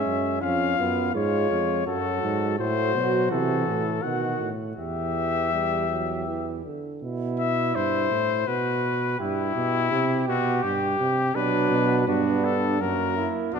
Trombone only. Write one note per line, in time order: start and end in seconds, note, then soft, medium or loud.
0.00 0.41 G#3 medium
0.42 0.78 C#4 medium
0.79 1.16 B3 medium
1.15 1.86 G#3 medium
1.86 2.57 F#3 medium
2.59 2.96 A3 medium
2.95 3.32 F#3 medium
3.31 4.03 E3 medium
4.03 4.50 D#3 medium
4.77 5.48 E3 medium
5.53 5.89 G3 medium
5.90 6.27 F#3 medium
6.28 6.64 E3 medium
6.66 7.02 D3 medium
11.35 12.04 F#3 medium
12.08 12.80 B3 medium
12.81 13.53 A#3 medium
13.55 13.60 B3 medium